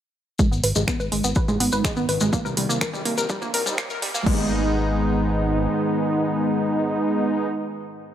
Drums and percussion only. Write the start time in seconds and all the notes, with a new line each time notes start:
0.39 kick, maracas
0.53 maracas
0.64 open hi-hat
0.75 mid tom, maracas
0.88 finger snap, kick, maracas
1.00 maracas
1.12 open hi-hat
1.24 maracas
1.35 kick, maracas
1.48 mid tom, maracas
1.60 open hi-hat
1.72 maracas
1.84 finger snap, kick, maracas
1.97 maracas
2.09 open hi-hat
2.20 mid tom, maracas
2.33 kick, maracas
2.46 maracas
2.57 open hi-hat
2.70 maracas
2.81 finger snap, kick, maracas
2.93 mid tom, maracas
3.05 open hi-hat
3.18 maracas
3.29 kick, maracas
3.42 maracas
3.54 open hi-hat
3.66 mid tom, maracas
3.78 finger snap, kick, maracas
3.90 maracas
4.02 open hi-hat
4.15 maracas
4.26 kick, crash